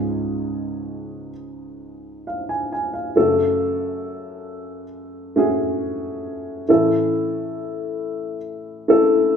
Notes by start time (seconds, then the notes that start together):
Already playing: C#2 G#2 G#3 C#4 F4 G#4
2.27 F5
2.49 G#5
2.72 G#5
2.93 F5
3.16 F#2 C#3 A3 C#4 F#4 A4
5.36 A3 C#4 F#4 G#4
6.69 A2 E3 A3 C#4 E4 A4
8.88 A3 C#4 E4 A4